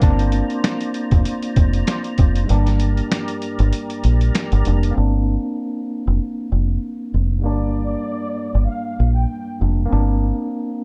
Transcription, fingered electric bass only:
0, 0, Header, 1, 2, 480
1, 0, Start_track
1, 0, Tempo, 618557
1, 16, Time_signature, 4, 2, 24, 8
1, 8413, End_track
2, 0, Start_track
2, 0, Title_t, "Fingered electric bass"
2, 0, Program_c, 0, 33
2, 18, Note_on_c, 0, 31, 110
2, 319, Note_off_c, 0, 31, 0
2, 869, Note_on_c, 0, 29, 100
2, 956, Note_off_c, 0, 29, 0
2, 1217, Note_on_c, 0, 29, 92
2, 1412, Note_off_c, 0, 29, 0
2, 1699, Note_on_c, 0, 29, 101
2, 1893, Note_off_c, 0, 29, 0
2, 1940, Note_on_c, 0, 31, 109
2, 2328, Note_off_c, 0, 31, 0
2, 2791, Note_on_c, 0, 31, 97
2, 2878, Note_off_c, 0, 31, 0
2, 3139, Note_on_c, 0, 34, 95
2, 3332, Note_off_c, 0, 34, 0
2, 3512, Note_on_c, 0, 31, 99
2, 3598, Note_off_c, 0, 31, 0
2, 3622, Note_on_c, 0, 29, 97
2, 3814, Note_off_c, 0, 29, 0
2, 3860, Note_on_c, 0, 31, 99
2, 4160, Note_off_c, 0, 31, 0
2, 4713, Note_on_c, 0, 29, 86
2, 4799, Note_off_c, 0, 29, 0
2, 5060, Note_on_c, 0, 29, 81
2, 5253, Note_off_c, 0, 29, 0
2, 5540, Note_on_c, 0, 29, 88
2, 5780, Note_off_c, 0, 29, 0
2, 5780, Note_on_c, 0, 31, 101
2, 6168, Note_off_c, 0, 31, 0
2, 6633, Note_on_c, 0, 31, 88
2, 6718, Note_off_c, 0, 31, 0
2, 6982, Note_on_c, 0, 34, 95
2, 7174, Note_off_c, 0, 34, 0
2, 7460, Note_on_c, 0, 29, 87
2, 7653, Note_off_c, 0, 29, 0
2, 7701, Note_on_c, 0, 31, 104
2, 8001, Note_off_c, 0, 31, 0
2, 8413, End_track
0, 0, End_of_file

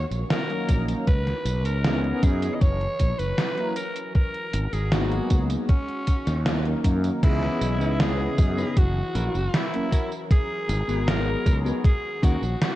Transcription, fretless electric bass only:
0, 0, Header, 1, 2, 480
1, 0, Start_track
1, 0, Tempo, 769231
1, 671, Time_signature, 4, 2, 24, 8
1, 7958, End_track
2, 0, Start_track
2, 0, Title_t, "Fretless electric bass"
2, 0, Program_c, 0, 35
2, 68, Note_on_c, 0, 34, 82
2, 144, Note_off_c, 0, 34, 0
2, 431, Note_on_c, 0, 34, 80
2, 582, Note_off_c, 0, 34, 0
2, 671, Note_on_c, 0, 37, 89
2, 822, Note_off_c, 0, 37, 0
2, 905, Note_on_c, 0, 35, 96
2, 1026, Note_off_c, 0, 35, 0
2, 1026, Note_on_c, 0, 37, 79
2, 1317, Note_off_c, 0, 37, 0
2, 1389, Note_on_c, 0, 42, 105
2, 1541, Note_off_c, 0, 42, 0
2, 1630, Note_on_c, 0, 30, 89
2, 1782, Note_off_c, 0, 30, 0
2, 1870, Note_on_c, 0, 34, 96
2, 1947, Note_off_c, 0, 34, 0
2, 1991, Note_on_c, 0, 30, 81
2, 2065, Note_off_c, 0, 30, 0
2, 2829, Note_on_c, 0, 32, 95
2, 2906, Note_off_c, 0, 32, 0
2, 2949, Note_on_c, 0, 32, 84
2, 3238, Note_off_c, 0, 32, 0
2, 3311, Note_on_c, 0, 37, 102
2, 3462, Note_off_c, 0, 37, 0
2, 3913, Note_on_c, 0, 39, 92
2, 4200, Note_off_c, 0, 39, 0
2, 4272, Note_on_c, 0, 42, 90
2, 4423, Note_off_c, 0, 42, 0
2, 4510, Note_on_c, 0, 37, 95
2, 4662, Note_off_c, 0, 37, 0
2, 4750, Note_on_c, 0, 35, 93
2, 4872, Note_off_c, 0, 35, 0
2, 4872, Note_on_c, 0, 37, 79
2, 5159, Note_off_c, 0, 37, 0
2, 5231, Note_on_c, 0, 42, 106
2, 5382, Note_off_c, 0, 42, 0
2, 5472, Note_on_c, 0, 30, 92
2, 5623, Note_off_c, 0, 30, 0
2, 5710, Note_on_c, 0, 34, 99
2, 5787, Note_off_c, 0, 34, 0
2, 5833, Note_on_c, 0, 30, 86
2, 5907, Note_off_c, 0, 30, 0
2, 6671, Note_on_c, 0, 32, 96
2, 6747, Note_off_c, 0, 32, 0
2, 6792, Note_on_c, 0, 32, 81
2, 7079, Note_off_c, 0, 32, 0
2, 7151, Note_on_c, 0, 37, 106
2, 7302, Note_off_c, 0, 37, 0
2, 7632, Note_on_c, 0, 39, 90
2, 7708, Note_off_c, 0, 39, 0
2, 7749, Note_on_c, 0, 34, 84
2, 7825, Note_off_c, 0, 34, 0
2, 7958, End_track
0, 0, End_of_file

